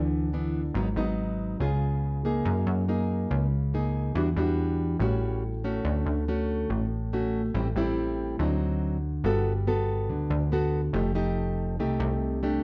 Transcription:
0.00 0.71 D2 medium
0.00 0.74 D3 soft
0.00 0.29 E3 medium
0.00 0.30 B3 soft
0.00 0.30 D4 medium
0.33 0.62 E3 medium
0.33 0.62 B3 medium
0.33 0.62 D4 medium
0.74 0.95 G#1 loud
0.74 1.59 G#2 soft
0.74 0.88 F#3 soft
0.74 0.88 B3 soft
0.74 0.88 D#4 medium
0.96 1.56 G#1 medium
0.96 1.57 F#3 medium
0.96 1.57 B3 medium
0.96 1.57 D#4 medium
1.60 2.41 C#2 medium
1.60 2.43 C#3 medium
1.60 2.21 B3 soft
1.60 2.21 F4 soft
1.60 2.21 G#4 medium
2.25 2.85 A#3 medium
2.25 2.85 D#4 medium
2.25 2.85 G#4 medium
2.45 2.65 F#2 loud
2.45 3.29 F#3 soft
2.67 3.26 F#2 medium
2.88 3.45 A#3 soft
2.88 3.46 D#4 soft
2.88 3.46 G#4 medium
3.31 4.12 C#2 loud
3.31 4.14 C#3 medium
3.74 4.14 A#3 medium
3.74 4.14 D#4 medium
3.74 4.15 G#4 medium
4.15 4.35 E2 loud
4.15 4.99 E3 soft
4.15 4.28 G3 medium
4.15 4.28 D4 soft
4.15 4.29 F#4 medium
4.36 4.96 E2 medium
4.36 4.97 G3 medium
4.36 4.98 D4 medium
4.36 4.98 F#4 medium
4.99 5.81 A1 loud
4.99 5.83 A2 soft
4.99 5.43 G3 soft
4.99 5.43 C#4 medium
4.99 5.43 F#4 medium
5.64 6.24 A3 medium
5.64 6.25 C#4 medium
5.64 6.25 F#4 medium
5.85 6.05 D2 loud
5.85 6.68 D3 soft
6.06 6.66 D2 medium
6.28 6.85 A3 medium
6.28 6.85 C#4 soft
6.28 6.85 F#4 medium
6.70 7.51 A1 medium
6.70 7.53 A2 medium
7.13 7.41 A3 soft
7.13 7.42 C#4 soft
7.13 7.42 F#4 medium
7.54 7.74 A1 loud
7.54 8.38 A2 medium
7.54 7.68 G3 medium
7.54 7.68 C4 soft
7.54 7.68 E4 medium
7.76 8.35 A1 medium
7.76 8.37 G3 medium
7.76 8.37 C4 medium
7.76 8.37 E4 medium
8.39 9.20 D2 medium
8.39 9.22 D3 medium
8.39 8.97 F#3 soft
8.39 8.97 C4 medium
8.39 8.97 D#4 medium
9.24 10.10 G1 loud
9.24 10.07 G3 medium
9.24 9.52 B3 medium
9.24 9.52 F#4 medium
9.24 9.52 A4 medium
9.67 10.48 B3 medium
9.67 10.48 F#4 soft
9.67 10.49 A4 medium
10.09 10.29 D2 loud
10.09 10.92 D3 medium
10.30 10.90 D2 loud
10.52 10.80 B3 medium
10.52 10.80 F#4 medium
10.52 10.81 A4 medium
10.93 11.80 F1 loud
10.93 11.76 F3 medium
10.93 11.12 A3 medium
10.93 11.12 D#4 soft
10.93 11.12 G4 medium
11.15 11.75 A3 medium
11.15 11.75 D#4 medium
11.15 11.76 G4 medium
11.78 11.98 C2 loud
11.78 12.62 C3 medium
11.78 12.39 A3 medium
11.78 12.39 D#4 medium
11.78 12.39 G4 medium
12.00 12.59 C2 loud
12.43 12.63 A3 medium
12.43 12.63 D4 medium
12.43 12.63 G4 medium

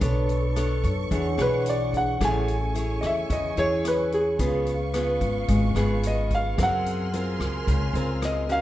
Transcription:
0.00 0.80 B1 loud
0.00 1.08 B3 medium
0.00 1.07 D4 medium
0.00 0.52 D4 medium
0.00 0.52 A4 medium
0.00 1.10 A4 medium
0.00 1.09 B4 soft
0.00 0.52 C#5 medium
0.00 1.10 C#5 medium
0.00 2.19 C#6 medium
0.00 kick medium
0.00 closed hi-hat medium
0.05 1.11 A5 medium
0.29 closed hi-hat soft
0.56 0.92 D4 medium
0.56 0.92 A4 medium
0.56 0.92 C#5 medium
0.56 cross-stick medium
0.56 closed hi-hat soft
0.84 1.09 F#2 medium
0.84 kick medium
0.84 closed hi-hat soft
1.08 1.37 E2 loud
1.08 2.18 E3 medium
1.08 2.17 D4 medium
1.08 1.27 D4 medium
1.08 2.18 G#4 medium
1.08 2.20 G#4 medium
1.08 1.28 G#4 medium
1.08 1.27 C#5 medium
1.08 2.20 F#5 medium
1.08 kick medium
1.08 closed hi-hat soft
1.12 2.19 C#5 medium
1.12 2.20 F#5 medium
1.37 2.16 B1 medium
1.37 2.16 D4 medium
1.37 2.16 G#4 medium
1.37 2.16 C#5 medium
1.37 cross-stick medium
1.37 closed hi-hat soft
1.42 1.67 B4 medium
1.66 1.94 D5 medium
1.66 closed hi-hat soft
1.93 2.22 F#5 medium
1.93 kick soft
1.93 closed hi-hat soft
2.18 2.99 A1 loud
2.18 3.27 A3 medium
2.18 4.34 C#4 soft
2.18 2.56 E4 medium
2.18 2.56 G#4 medium
2.18 4.37 G#5 medium
2.18 4.37 C#6 medium
2.18 kick medium
2.18 cross-stick medium
2.18 closed hi-hat soft
2.22 2.56 C#5 medium
2.22 4.37 E5 medium
2.22 3.01 G#5 medium
2.48 closed hi-hat soft
2.75 3.53 E4 medium
2.75 3.53 G#4 medium
2.75 3.53 C#5 medium
2.75 closed hi-hat soft
3.01 3.28 E2 medium
3.01 3.04 D#5 medium
3.01 cross-stick medium
3.01 closed hi-hat soft
3.06 3.31 E5 medium
3.30 3.55 E2 medium
3.30 4.37 E3 medium
3.30 3.58 D#5 medium
3.30 kick medium
3.30 closed hi-hat soft
3.57 4.35 E2 medium
3.57 4.35 E4 medium
3.57 4.35 G#4 medium
3.57 4.35 C#5 medium
3.57 3.85 C#5 loud
3.57 closed hi-hat soft
3.85 4.13 B4 medium
3.85 cross-stick medium
3.85 closed hi-hat soft
4.12 4.64 G#4 medium
4.12 closed hi-hat soft
4.36 5.17 C#2 loud
4.36 5.46 C#3 medium
4.36 4.75 B3 medium
4.36 6.52 C#4 soft
4.36 4.75 F4 medium
4.36 6.53 G#4 soft
4.36 6.56 B4 medium
4.36 6.54 B4 soft
4.36 6.55 F5 medium
4.36 6.56 C#6 medium
4.36 kick medium
4.36 closed hi-hat soft
4.40 4.75 G#4 medium
4.40 6.55 F5 soft
4.66 closed hi-hat soft
4.94 5.72 B3 medium
4.94 5.72 F4 medium
4.94 5.72 G#4 medium
4.94 cross-stick medium
4.94 closed hi-hat soft
5.21 5.47 G#1 medium
5.21 kick medium
5.21 closed hi-hat soft
5.48 5.74 G#1 loud
5.48 6.55 G#3 medium
5.48 kick medium
5.48 closed hi-hat soft
5.75 6.53 G#1 medium
5.75 6.54 B3 medium
5.75 6.54 F4 medium
5.75 6.54 G#4 medium
5.75 cross-stick medium
5.75 closed hi-hat soft
6.03 6.32 D#5 medium
6.03 closed hi-hat medium
6.30 kick soft
6.30 closed hi-hat soft
6.35 6.59 F5 medium
6.55 7.36 F#2 loud
6.55 7.65 F#3 medium
6.55 8.61 C4 soft
6.55 7.09 C4 medium
6.55 8.61 G#4 soft
6.55 8.61 A#4 medium
6.55 8.61 G#5 medium
6.55 8.61 C6 medium
6.55 kick medium
6.55 cross-stick medium
6.55 closed hi-hat soft
6.59 7.09 A#4 medium
6.59 8.61 A#4 soft
6.59 7.11 F#5 medium
6.59 8.61 F6 medium
6.86 closed hi-hat soft
7.13 7.91 C4 medium
7.13 7.91 F4 soft
7.13 7.91 A#4 medium
7.13 closed hi-hat soft
7.39 7.65 C#2 medium
7.39 cross-stick medium
7.39 closed hi-hat soft
7.67 7.93 C#2 medium
7.67 8.61 C#3 medium
7.67 kick medium
7.67 closed hi-hat soft
7.93 8.61 C#2 medium
7.93 8.45 C4 medium
7.93 8.45 F4 medium
7.93 8.46 A#4 medium
7.93 closed hi-hat soft
8.22 8.50 D#5 medium
8.22 cross-stick medium
8.22 closed hi-hat soft
8.49 8.61 C#4 medium
8.49 8.61 F#4 medium
8.49 8.61 A#4 medium
8.49 8.61 F5 medium
8.49 closed hi-hat soft

